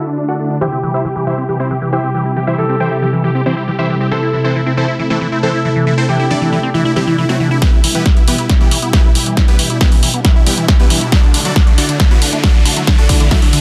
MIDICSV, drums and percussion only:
0, 0, Header, 1, 2, 480
1, 0, Start_track
1, 0, Key_signature, 1, "minor"
1, 0, Tempo, 437956
1, 671, Time_signature, 4, 2, 24, 8
1, 14915, End_track
2, 0, Start_track
2, 0, Title_t, "Drums"
2, 8351, Note_on_c, 9, 36, 114
2, 8351, Note_on_c, 9, 38, 47
2, 8351, Note_on_c, 9, 42, 81
2, 8460, Note_off_c, 9, 36, 0
2, 8461, Note_off_c, 9, 38, 0
2, 8461, Note_off_c, 9, 42, 0
2, 8591, Note_on_c, 9, 46, 104
2, 8700, Note_off_c, 9, 46, 0
2, 8710, Note_on_c, 9, 42, 53
2, 8820, Note_off_c, 9, 42, 0
2, 8830, Note_on_c, 9, 38, 49
2, 8830, Note_on_c, 9, 42, 82
2, 8831, Note_on_c, 9, 36, 118
2, 8940, Note_off_c, 9, 36, 0
2, 8940, Note_off_c, 9, 38, 0
2, 8940, Note_off_c, 9, 42, 0
2, 8950, Note_on_c, 9, 42, 37
2, 9060, Note_off_c, 9, 42, 0
2, 9070, Note_on_c, 9, 46, 100
2, 9180, Note_off_c, 9, 46, 0
2, 9190, Note_on_c, 9, 42, 53
2, 9299, Note_off_c, 9, 42, 0
2, 9310, Note_on_c, 9, 38, 50
2, 9310, Note_on_c, 9, 42, 82
2, 9311, Note_on_c, 9, 36, 116
2, 9420, Note_off_c, 9, 36, 0
2, 9420, Note_off_c, 9, 38, 0
2, 9420, Note_off_c, 9, 42, 0
2, 9550, Note_on_c, 9, 46, 105
2, 9660, Note_off_c, 9, 46, 0
2, 9671, Note_on_c, 9, 42, 55
2, 9780, Note_off_c, 9, 42, 0
2, 9791, Note_on_c, 9, 36, 119
2, 9791, Note_on_c, 9, 38, 49
2, 9791, Note_on_c, 9, 42, 74
2, 9900, Note_off_c, 9, 36, 0
2, 9900, Note_off_c, 9, 38, 0
2, 9900, Note_off_c, 9, 42, 0
2, 10031, Note_on_c, 9, 46, 100
2, 10141, Note_off_c, 9, 46, 0
2, 10151, Note_on_c, 9, 42, 53
2, 10261, Note_off_c, 9, 42, 0
2, 10271, Note_on_c, 9, 36, 117
2, 10271, Note_on_c, 9, 38, 51
2, 10271, Note_on_c, 9, 42, 81
2, 10380, Note_off_c, 9, 36, 0
2, 10380, Note_off_c, 9, 38, 0
2, 10380, Note_off_c, 9, 42, 0
2, 10391, Note_on_c, 9, 42, 37
2, 10501, Note_off_c, 9, 42, 0
2, 10510, Note_on_c, 9, 46, 107
2, 10620, Note_off_c, 9, 46, 0
2, 10631, Note_on_c, 9, 42, 52
2, 10740, Note_off_c, 9, 42, 0
2, 10750, Note_on_c, 9, 36, 118
2, 10751, Note_on_c, 9, 38, 55
2, 10751, Note_on_c, 9, 42, 84
2, 10860, Note_off_c, 9, 36, 0
2, 10860, Note_off_c, 9, 38, 0
2, 10860, Note_off_c, 9, 42, 0
2, 10870, Note_on_c, 9, 46, 58
2, 10980, Note_off_c, 9, 46, 0
2, 10990, Note_on_c, 9, 46, 109
2, 11100, Note_off_c, 9, 46, 0
2, 11110, Note_on_c, 9, 42, 53
2, 11220, Note_off_c, 9, 42, 0
2, 11230, Note_on_c, 9, 36, 126
2, 11230, Note_on_c, 9, 38, 54
2, 11230, Note_on_c, 9, 42, 76
2, 11340, Note_off_c, 9, 36, 0
2, 11340, Note_off_c, 9, 38, 0
2, 11340, Note_off_c, 9, 42, 0
2, 11470, Note_on_c, 9, 46, 109
2, 11579, Note_off_c, 9, 46, 0
2, 11591, Note_on_c, 9, 42, 54
2, 11700, Note_off_c, 9, 42, 0
2, 11710, Note_on_c, 9, 36, 121
2, 11711, Note_on_c, 9, 38, 57
2, 11711, Note_on_c, 9, 42, 73
2, 11820, Note_off_c, 9, 36, 0
2, 11820, Note_off_c, 9, 38, 0
2, 11820, Note_off_c, 9, 42, 0
2, 11950, Note_on_c, 9, 46, 105
2, 12059, Note_off_c, 9, 46, 0
2, 12070, Note_on_c, 9, 42, 51
2, 12180, Note_off_c, 9, 42, 0
2, 12190, Note_on_c, 9, 36, 123
2, 12190, Note_on_c, 9, 38, 60
2, 12190, Note_on_c, 9, 42, 77
2, 12299, Note_off_c, 9, 38, 0
2, 12299, Note_off_c, 9, 42, 0
2, 12300, Note_off_c, 9, 36, 0
2, 12430, Note_on_c, 9, 46, 111
2, 12539, Note_off_c, 9, 46, 0
2, 12550, Note_on_c, 9, 42, 49
2, 12660, Note_off_c, 9, 42, 0
2, 12670, Note_on_c, 9, 36, 121
2, 12670, Note_on_c, 9, 38, 60
2, 12670, Note_on_c, 9, 42, 79
2, 12780, Note_off_c, 9, 36, 0
2, 12780, Note_off_c, 9, 38, 0
2, 12780, Note_off_c, 9, 42, 0
2, 12790, Note_on_c, 9, 42, 35
2, 12900, Note_off_c, 9, 42, 0
2, 12910, Note_on_c, 9, 46, 113
2, 13020, Note_off_c, 9, 46, 0
2, 13030, Note_on_c, 9, 42, 51
2, 13140, Note_off_c, 9, 42, 0
2, 13150, Note_on_c, 9, 36, 123
2, 13151, Note_on_c, 9, 38, 61
2, 13151, Note_on_c, 9, 42, 74
2, 13259, Note_off_c, 9, 36, 0
2, 13260, Note_off_c, 9, 38, 0
2, 13260, Note_off_c, 9, 42, 0
2, 13390, Note_on_c, 9, 46, 113
2, 13500, Note_off_c, 9, 46, 0
2, 13511, Note_on_c, 9, 42, 51
2, 13620, Note_off_c, 9, 42, 0
2, 13630, Note_on_c, 9, 36, 121
2, 13630, Note_on_c, 9, 38, 61
2, 13630, Note_on_c, 9, 42, 73
2, 13739, Note_off_c, 9, 36, 0
2, 13740, Note_off_c, 9, 38, 0
2, 13740, Note_off_c, 9, 42, 0
2, 13870, Note_on_c, 9, 46, 111
2, 13980, Note_off_c, 9, 46, 0
2, 13990, Note_on_c, 9, 42, 52
2, 14100, Note_off_c, 9, 42, 0
2, 14109, Note_on_c, 9, 36, 121
2, 14110, Note_on_c, 9, 38, 65
2, 14110, Note_on_c, 9, 42, 74
2, 14219, Note_off_c, 9, 36, 0
2, 14220, Note_off_c, 9, 38, 0
2, 14220, Note_off_c, 9, 42, 0
2, 14230, Note_on_c, 9, 42, 35
2, 14340, Note_off_c, 9, 42, 0
2, 14349, Note_on_c, 9, 36, 64
2, 14349, Note_on_c, 9, 46, 113
2, 14459, Note_off_c, 9, 36, 0
2, 14459, Note_off_c, 9, 46, 0
2, 14470, Note_on_c, 9, 42, 50
2, 14580, Note_off_c, 9, 42, 0
2, 14590, Note_on_c, 9, 36, 120
2, 14590, Note_on_c, 9, 38, 69
2, 14590, Note_on_c, 9, 42, 75
2, 14699, Note_off_c, 9, 36, 0
2, 14699, Note_off_c, 9, 38, 0
2, 14699, Note_off_c, 9, 42, 0
2, 14709, Note_on_c, 9, 46, 63
2, 14819, Note_off_c, 9, 46, 0
2, 14829, Note_on_c, 9, 46, 105
2, 14915, Note_off_c, 9, 46, 0
2, 14915, End_track
0, 0, End_of_file